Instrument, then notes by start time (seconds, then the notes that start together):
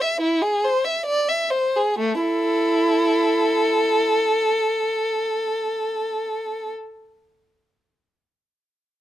violin
0.01 E5
0.21 E4
0.42 G#4
0.65 C5
0.85 E5
1.06 D5
1.29 E5
1.51 C5
1.77 G#4
1.99 A3
2.21 E4 A4